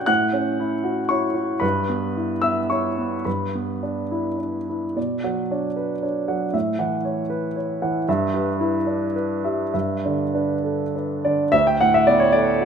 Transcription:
Already playing: B2 C#4 D4 F#4 C#5 F#5 G5 F#6 G6
0.06 A2 F#5 F#6
0.33 C#4
0.60 E4
0.84 F#4
1.09 E4 C#5 C#6
1.35 F#4
1.60 G2 B4 B5
1.89 B3
2.17 E4
2.42 B3 E5 E6
2.70 E4 C#5 C#6
2.98 B3
3.25 G2 B4 B5
3.55 B3
3.83 D4
4.11 E4
4.38 D4
4.69 E4
4.96 B2 D5
5.24 F#3 F#5
5.51 D4 C#5
5.76 B4
6.03 D4 C#5
6.28 F#3 F#5
6.54 A2 E5
6.79 E3 F#5
7.05 C#5
7.30 B4
7.56 C#5
7.82 E3 F#5
8.09 G2 E5
8.34 G3 B4
8.60 E4
8.87 D4
9.16 B4
9.44 G3 E5
9.74 G2 E5
10.05 D3 D5
10.34 D4 B4
10.63 A4
10.96 D4 B4
11.25 D3 D5
11.52 D2 E5
11.67 G5
11.81 A2 F#5
11.94 E5
12.07 B3 D5
12.20 C#5
12.32 A4 D5
12.61 F#4

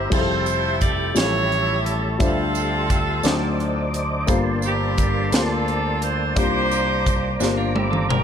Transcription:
Already playing: C3 G3 A#3 C4 E4 G4 A#4 C5
0.10 F1 F3 G3 C4 E4 G4 G#4 A4 C5 E5 G5 A5, kick, crash, tambourine
0.19 A4
0.46 closed hi-hat, tambourine
0.81 D5, kick, closed hi-hat, tambourine
1.15 A1 A2 F3 G3 C#4 E4 G4 C#5 E5 A5, snare, closed hi-hat, tambourine
1.19 G4
1.23 A4
1.52 closed hi-hat
1.86 A4, closed hi-hat
2.19 D2 D3 G3 D4 F4 A4 C5 E5 C6, kick, closed hi-hat, tambourine
2.24 C4 F4
2.55 closed hi-hat, tambourine
2.90 kick, closed hi-hat, tambourine
3.23 D2 D3 F#3 A3 D4 D#4 C5 D5 D#5 D6, snare, closed hi-hat, tambourine
3.60 closed hi-hat
3.94 closed hi-hat
4.27 G1 G2 A#3 F4 G4 A4 C5 D5 A5 C6, kick, closed hi-hat, tambourine
4.62 A#3 C4 G4, closed hi-hat, tambourine
4.98 kick, closed hi-hat, tambourine
5.32 D2 A#3 C4 F4 G4 A4 C5, snare, closed hi-hat, tambourine
5.68 closed hi-hat
6.02 C5, closed hi-hat
6.36 C2 C3 A#3 D4 F4 G4 C5 A#5 D6, kick, closed hi-hat, tambourine
6.71 closed hi-hat, tambourine
7.06 kick, closed hi-hat, tambourine
7.40 G1 A#3 D4 F4 G4 C5, snare, tambourine
7.57 D4 F4
7.75 E4 G4, high tom
7.91 F4 A4, mid tom
8.09 G4 A#4, mid tom

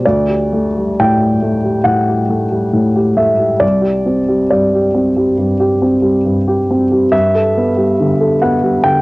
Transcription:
0.06 D2 D5
0.29 G4
0.53 A3
0.77 G3
0.99 A2 G5
1.20 G4
1.42 A3
1.64 G3
1.84 A2 F#5
2.09 G4
2.29 A3
2.51 G3
2.73 A2
2.96 G4
3.17 A3 E5
3.38 G3
3.60 C2 D5
3.82 G4
4.06 C4
4.28 G3
4.50 G2 D5
4.75 G4
4.95 C4
5.16 G3
5.38 G2
5.60 G4
5.82 C4
6.02 G3
6.25 G2
6.48 G4
6.71 C4
6.92 G3
7.12 G2 E5
7.35 A4
7.57 B3
7.77 G3
8.00 D3
8.20 A4
8.42 B3 F#5
8.63 G3
8.83 D3 G5

